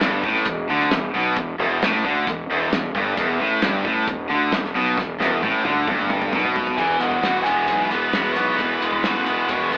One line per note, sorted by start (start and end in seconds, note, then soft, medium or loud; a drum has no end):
0.01 0.22 G1 loud
0.01 0.23 G2 loud
0.01 snare loud
0.01 closed hi-hat medium
0.23 0.44 A1 medium
0.23 0.46 A2 loud
0.23 kick medium
0.35 snare soft
0.45 0.67 E1 medium
0.45 0.65 E2 medium
0.45 kick loud
0.45 closed hi-hat medium
0.69 0.90 D2 medium
0.69 0.91 D3 loud
0.80 snare soft
0.91 1.13 E1 medium
0.91 1.10 E2 medium
0.91 snare loud
0.91 closed hi-hat medium
1.14 1.35 B1 medium
1.14 1.36 B2 loud
1.36 1.58 E1 medium
1.36 1.55 E2 medium
1.36 kick loud
1.36 closed hi-hat medium
1.59 1.80 E1 loud
1.59 1.81 E2 loud
1.82 2.03 A1 loud
1.82 2.04 A2 loud
1.82 snare loud
1.82 closed hi-hat medium
2.05 2.26 D2 medium
2.05 2.27 D3 medium
2.05 kick medium
2.27 2.48 E1 medium
2.27 2.46 E2 medium
2.27 kick loud
2.27 closed hi-hat medium
2.50 2.71 E1 medium
2.50 2.72 E2 loud
2.72 2.93 E1 medium
2.72 2.91 E2 medium
2.72 snare loud
2.72 closed hi-hat medium
2.95 3.16 G1 medium
2.95 3.17 G2 loud
2.95 kick medium
3.17 3.38 E1 medium
3.17 3.40 E2 loud
3.17 kick loud
3.17 closed hi-hat medium
3.39 3.61 A1 loud
3.39 3.62 A2 loud
3.61 3.83 G1 loud
3.61 3.84 G2 loud
3.61 snare loud
3.61 closed hi-hat medium
3.85 4.06 A1 medium
3.85 4.07 A2 loud
3.85 kick medium
4.07 4.29 E1 medium
4.07 4.26 E2 medium
4.07 kick loud
4.07 closed hi-hat medium
4.30 4.51 D2 medium
4.30 4.52 D3 loud
4.52 4.73 E1 medium
4.52 4.71 E2 medium
4.52 snare loud
4.52 closed hi-hat medium
4.65 snare soft
4.74 4.96 B1 loud
4.74 4.97 B2 medium
4.98 5.16 E2 medium
4.98 kick loud
4.98 snare medium
5.19 5.41 E1 loud
5.19 5.42 E2 loud
5.19 snare medium
5.42 5.63 A1 loud
5.42 5.65 A2 loud
5.42 high tom medium
5.63 5.85 D2 medium
5.63 5.87 D3 medium
5.63 high tom medium
5.86 6.30 G1 loud
5.86 6.32 G2 loud
5.86 kick loud
5.86 mid tom medium
5.99 mid tom medium
6.10 mid tom medium
6.22 mid tom medium
6.32 6.79 B1 medium
6.32 6.77 B2 loud
6.32 mid tom medium
6.45 floor tom medium
6.56 floor tom loud
6.67 floor tom medium
6.77 6.99 E1 medium
6.77 7.91 E2 medium
6.77 7.01 E2 medium
6.77 7.01 B2 medium
6.77 7.22 E3 medium
6.77 7.01 E3 medium
6.77 7.01 G#3 medium
6.77 7.00 B3 medium
6.77 6.99 F#4 medium
6.77 7.00 G#4 medium
6.77 kick loud
6.77 crash medium
7.00 7.22 E1 medium
7.00 7.21 E3 soft
7.00 7.44 G#3 medium
7.00 7.21 G#3 soft
7.00 7.22 B3 soft
7.00 7.43 F#4 medium
7.00 7.23 F#4 medium
7.00 closed hi-hat medium
7.12 kick medium
7.21 7.44 E1 medium
7.21 7.45 E2 medium
7.21 7.45 B2 medium
7.21 7.46 E3 medium
7.21 7.67 E3 medium
7.21 7.46 G#3 medium
7.21 7.45 B3 medium
7.21 8.36 F#4 medium
7.21 7.44 F#4 medium
7.21 snare medium
7.21 closed hi-hat medium
7.43 7.66 E1 medium
7.43 8.59 G#3 medium
7.43 8.12 B3 medium
7.43 7.69 B3 soft
7.43 7.68 F#4 soft
7.43 7.91 G#4 medium
7.43 closed hi-hat medium
7.48 7.67 E3 soft
7.67 7.89 B1 medium
7.67 8.59 E3 medium
7.67 7.91 E3 soft
7.67 8.82 G#3 medium
7.67 7.91 G#3 medium
7.67 7.90 B3 medium
7.67 7.90 F#4 medium
7.67 kick medium
7.67 closed hi-hat medium
7.90 8.12 E1 medium
7.90 8.37 E3 medium
7.90 8.13 G#3 soft
7.90 8.35 B3 medium
7.90 8.14 B3 soft
7.90 8.14 F#4 medium
7.90 8.33 B4 medium
7.90 closed hi-hat soft
7.94 8.13 E3 soft
8.12 8.34 E1 medium
8.12 8.36 E2 medium
8.12 8.37 B2 medium
8.12 8.37 E3 medium
8.12 8.37 G#3 medium
8.12 9.27 B3 medium
8.12 8.36 B3 medium
8.12 8.35 F#4 medium
8.12 9.28 F#4 medium
8.12 snare loud
8.12 closed hi-hat medium
8.33 8.57 B1 medium
8.33 9.73 E3 medium
8.33 9.50 B3 medium
8.33 8.60 B3 soft
8.33 8.59 F#4 soft
8.33 8.56 C#5 medium
8.33 closed hi-hat medium
8.38 8.59 E3 soft
8.38 8.59 G#3 soft
8.57 8.80 E1 medium
8.57 8.82 E2 medium
8.57 9.73 E2 medium
8.57 8.82 B2 medium
8.57 9.04 E3 medium
8.57 8.82 E3 medium
8.57 8.82 G#3 medium
8.57 9.00 B4 loud
8.57 kick medium
8.57 closed hi-hat medium
8.61 8.81 B3 medium
8.61 8.80 F#4 medium
8.81 9.03 E1 medium
8.81 9.04 E3 soft
8.81 9.26 G#3 medium
8.81 9.04 G#3 soft
8.81 9.05 B3 soft
8.81 9.04 F#4 soft
8.81 closed hi-hat medium
8.93 kick medium
9.02 9.25 A1 medium
9.02 9.27 E2 medium
9.02 9.27 B2 medium
9.02 9.50 E3 medium
9.02 9.28 E3 medium
9.02 9.27 G#3 medium
9.02 9.26 B3 medium
9.02 9.77 F#4 medium
9.02 9.25 F#4 medium
9.02 9.49 B4 medium
9.02 snare loud
9.02 closed hi-hat medium
9.26 9.48 E1 medium
9.26 9.49 E3 soft
9.26 9.77 G#3 medium
9.26 9.50 G#3 soft
9.26 9.50 B3 soft
9.26 9.77 B3 medium
9.26 9.49 F#4 soft
9.26 closed hi-hat medium
9.49 9.70 E1 medium
9.49 9.77 E3 medium
9.49 9.73 E3 medium
9.49 9.77 G#3 medium
9.49 9.73 G#3 medium
9.49 9.73 B3 medium
9.49 9.72 C#5 loud
9.49 kick loud
9.49 closed hi-hat medium
9.53 9.72 F#4 medium
9.72 9.77 E1 medium
9.72 9.77 E3 medium
9.72 9.77 B3 medium
9.72 9.77 F#4 medium
9.72 9.77 B4 medium
9.72 kick medium
9.72 closed hi-hat medium